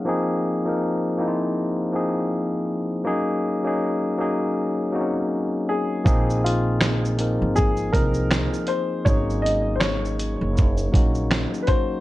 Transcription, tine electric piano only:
X:1
M:4/4
L:1/16
Q:"Swing 16ths" 1/4=80
K:Bbm
V:1 name="Tine electric piano"
[F,B,CEA]3 [F,B,CEB]3 [F,B,CE=EF]3 z [F,B,C_EA]4- [F,B,CEA] z | [G,B,DEA]3 [G,B,DEA]3 [G,B,DEA]3 z [G,B,CDEG]4- [G,B,CDEG] z | [F,B,CEA]4- [F,B,CEA] z [F,B,CEB]3 z [F,B,CEA]4- [F,B,CEA] z | [G,B,DEA]6- [G,B,DEA] z3 [G,B,DEG]3 z [G,B,DEG]2 |]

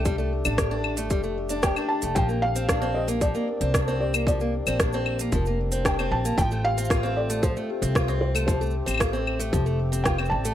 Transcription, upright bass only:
X:1
M:4/4
L:1/16
Q:1/4=114
K:Bb
V:1 name="Upright bass" clef=bass
C,,3 A,,,4- A,,, F,,,4- F,,, z2 F,,, | B,,,8- B,,, z2 C,,4- C,,- | C,,3 B,,,4- B,,, F,,,6 B,,,2 | A,,,8- A,,, z2 C,,4- C,,- |
C,,3 A,,,4- A,,, F,,,6 A,,,2 |]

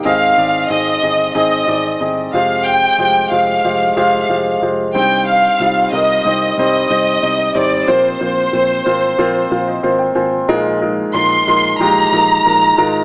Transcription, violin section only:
X:1
M:4/4
L:1/8
Q:1/4=92
K:Bbmix
V:1 name="Violin section"
f2 e2 e2 z f | g2 f2 f2 z g | f2 e2 e3 d | c6 z2 |
z2 c'2 b4 |]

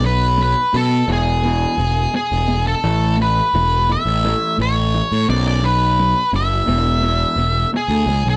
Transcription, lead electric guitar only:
X:1
M:4/4
L:1/16
Q:1/4=86
K:Emix
V:1 name="Lead electric guitar"
B2 B2 A2 G6 G3 A- | A2 B4 e4 c4 d d | B4 e8 G3 A |]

